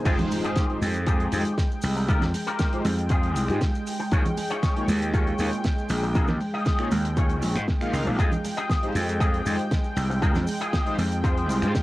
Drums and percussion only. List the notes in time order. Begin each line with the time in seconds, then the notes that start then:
0.05 kick, closed hi-hat, crash, maracas
0.19 closed hi-hat, low conga, maracas
0.30 open hi-hat, high conga, maracas
0.44 closed hi-hat, maracas
0.55 kick, snare, closed hi-hat, maracas
0.69 closed hi-hat
0.82 open hi-hat, high conga, maracas
0.94 closed hi-hat, maracas
1.06 kick, closed hi-hat, maracas
1.20 closed hi-hat
1.32 open hi-hat, high conga, maracas
1.45 closed hi-hat, maracas
1.58 kick, snare, closed hi-hat, maracas
1.71 maracas
1.82 open hi-hat, maracas
1.97 maracas
2.08 kick, closed hi-hat, maracas
2.22 snare, closed hi-hat, low conga, maracas
2.34 open hi-hat, high conga, maracas
2.47 closed hi-hat, maracas
2.59 kick, snare, closed hi-hat, maracas
2.73 closed hi-hat
2.85 open hi-hat, high conga, maracas
2.99 closed hi-hat, maracas
3.09 kick, closed hi-hat, maracas
3.23 closed hi-hat
3.36 open hi-hat, high conga, maracas
3.48 finger snap, closed hi-hat, maracas
3.61 kick, snare, closed hi-hat, maracas
3.75 maracas
3.87 open hi-hat, maracas
4.00 maracas
4.11 kick, closed hi-hat, maracas
4.25 closed hi-hat, low conga, maracas
4.37 open hi-hat, high conga, maracas
4.50 closed hi-hat, maracas
4.63 kick, snare, closed hi-hat, maracas
4.76 closed hi-hat
4.88 open hi-hat, high conga, maracas
5.01 closed hi-hat, maracas
5.14 kick, closed hi-hat, maracas
5.27 closed hi-hat
5.39 open hi-hat, high conga, maracas
5.52 closed hi-hat, maracas
5.64 kick, snare, closed hi-hat, maracas
5.78 maracas
5.89 open hi-hat, maracas
6.03 maracas
6.15 kick, closed hi-hat, maracas
6.28 snare, closed hi-hat, low conga, maracas
6.41 open hi-hat, high conga, maracas
6.54 closed hi-hat, maracas
6.65 kick, snare, closed hi-hat, maracas
6.79 finger snap, closed hi-hat
6.91 open hi-hat, high conga, maracas
7.05 closed hi-hat, maracas
7.17 kick, closed hi-hat, maracas
7.30 closed hi-hat, maracas
7.42 open hi-hat, high conga, maracas
7.56 finger snap, closed hi-hat, maracas
7.68 kick, snare, closed hi-hat, maracas
7.81 finger snap, closed hi-hat, maracas
7.94 open hi-hat, maracas
8.07 maracas
8.19 kick, closed hi-hat, maracas
8.32 closed hi-hat, low conga, maracas
8.45 open hi-hat, high conga, maracas
8.57 closed hi-hat, maracas
8.70 kick, snare, closed hi-hat, maracas
8.83 closed hi-hat
8.95 open hi-hat, high conga, maracas
9.09 closed hi-hat, maracas
9.21 kick, closed hi-hat, maracas
9.34 closed hi-hat
9.46 open hi-hat, high conga, maracas
9.59 closed hi-hat, maracas
9.71 kick, snare, closed hi-hat, maracas
9.84 maracas
9.97 open hi-hat, maracas
10.11 maracas
10.22 kick, closed hi-hat, maracas
10.35 snare, closed hi-hat, low conga, maracas
10.47 open hi-hat, high conga, maracas
10.61 closed hi-hat, maracas
10.73 kick, snare, closed hi-hat, maracas
10.86 closed hi-hat
10.98 open hi-hat, high conga, maracas
11.12 closed hi-hat, maracas
11.24 kick, closed hi-hat, maracas
11.37 closed hi-hat
11.49 open hi-hat, high conga, maracas
11.62 finger snap, closed hi-hat, maracas
11.75 kick, snare, closed hi-hat, maracas